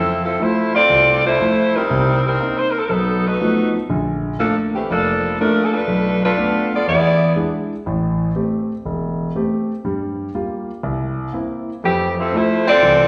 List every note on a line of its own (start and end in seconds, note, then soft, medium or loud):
0.00 0.33 F2 medium
0.00 0.22 F3 medium
0.00 0.22 C4 medium
0.00 0.22 E4 medium
0.00 0.22 A4 medium
0.25 0.39 F3 medium
0.25 0.39 C4 medium
0.25 0.39 E4 medium
0.25 0.39 A4 medium
0.40 0.76 F3 soft
0.40 0.76 A3 soft
0.40 0.75 A3 medium
0.40 0.76 E4 soft
0.40 0.75 E4 medium
0.40 0.73 F4 medium
0.40 0.75 C5 medium
0.74 1.21 C4 medium
0.74 1.21 F4 medium
0.74 1.21 A4 medium
0.74 1.21 D5 loud
0.90 1.33 C2 medium
1.25 1.74 A3 medium
1.25 1.75 E4 medium
1.25 1.74 F4 medium
1.25 1.75 C5 loud
1.39 1.75 F3 soft
1.39 1.76 A3 soft
1.39 1.76 E4 medium
1.75 2.24 G3 medium
1.75 2.24 C4 medium
1.75 2.24 D#4 medium
1.75 2.24 A#4 medium
1.90 2.33 C2 medium
1.90 2.33 C3 medium
2.26 2.57 G3 medium
2.26 2.56 C4 medium
2.26 2.57 D#4 medium
2.26 2.56 A#4 medium
2.40 2.75 A#3 soft
2.40 2.76 C4 soft
2.40 2.76 D#4 soft
2.58 2.70 C5 medium
2.71 2.78 A#4 medium
2.78 2.84 A4 medium
2.84 2.90 A#4 medium
2.89 3.33 B1 medium
2.89 3.24 F#3 medium
2.89 3.24 B3 medium
2.89 3.24 D#4 medium
2.89 3.24 A4 medium
3.26 3.74 A3 medium
3.26 3.74 D#4 medium
3.26 3.74 F#4 medium
3.26 3.75 B4 medium
3.40 3.75 F3 soft
3.40 3.75 A3 soft
3.40 3.76 B3 soft
3.40 3.76 D#4 soft
3.89 4.33 A#1 medium
3.89 4.32 D3 medium
4.39 4.55 F3 medium
4.39 4.74 A3 soft
4.39 4.74 A#3 soft
4.39 4.54 A#3 medium
4.39 4.55 D4 medium
4.39 4.75 D4 soft
4.39 4.55 A4 medium
4.74 4.88 E3 medium
4.74 4.88 A3 medium
4.74 4.88 C4 medium
4.74 4.88 G4 medium
4.90 5.33 F1 medium
4.90 5.36 F3 medium
4.90 5.36 A#3 medium
4.90 5.35 D4 medium
4.90 5.36 A4 medium
5.39 5.63 F3 medium
5.39 5.75 A3 soft
5.39 5.64 A3 medium
5.39 5.75 A#3 soft
5.39 5.63 D4 medium
5.39 5.75 D4 soft
5.39 5.63 A#4 medium
5.64 5.73 A4 medium
5.73 6.22 A3 medium
5.73 6.22 D4 medium
5.73 6.22 F4 medium
5.73 6.23 B4 medium
5.87 6.31 B1 medium
6.24 6.69 A3 medium
6.24 6.69 D4 medium
6.24 6.69 F4 medium
6.24 6.69 B4 medium
6.37 6.73 A3 soft
6.37 6.73 B3 soft
6.37 6.73 D4 soft
6.73 6.87 B3 medium
6.73 6.88 F4 medium
6.73 6.88 A4 medium
6.73 6.87 D5 medium
6.87 7.31 E2 medium
6.87 7.34 B3 medium
6.87 7.34 E4 medium
6.87 7.34 G#4 medium
6.87 7.34 D5 loud
7.36 7.72 G#3 soft
7.36 7.72 D4 soft
7.36 7.72 E4 soft
7.86 8.30 A1 medium
7.86 8.30 A2 medium
8.36 8.71 A3 soft
8.36 8.71 C4 soft
8.36 8.72 G4 soft
8.85 9.29 E1 medium
9.36 9.71 A3 soft
9.36 9.71 C4 soft
9.36 9.71 G4 medium
9.85 10.28 G2 medium
9.85 10.28 G3 medium
10.35 10.70 G3 soft
10.35 10.70 A#3 soft
10.35 10.70 F4 soft
10.83 11.27 C2 medium
11.33 11.69 A#3 soft
11.33 11.69 C4 soft
11.33 11.69 E4 soft
11.83 12.27 F2 medium
11.83 12.15 E3 medium
11.83 12.15 A3 medium
11.83 12.15 C4 medium
11.83 12.15 G4 medium
12.18 12.33 F3 medium
12.18 12.33 C4 medium
12.18 12.34 E4 medium
12.18 12.33 A4 medium
12.32 12.68 F3 soft
12.32 12.68 A3 soft
12.32 12.68 A3 medium
12.32 12.68 E4 medium
12.32 12.67 F4 medium
12.32 12.68 C5 medium
12.67 13.08 C4 loud
12.67 13.08 F4 medium
12.67 13.08 A4 medium
12.67 13.08 D5 loud
12.83 13.08 C2 medium
12.83 13.08 E3 medium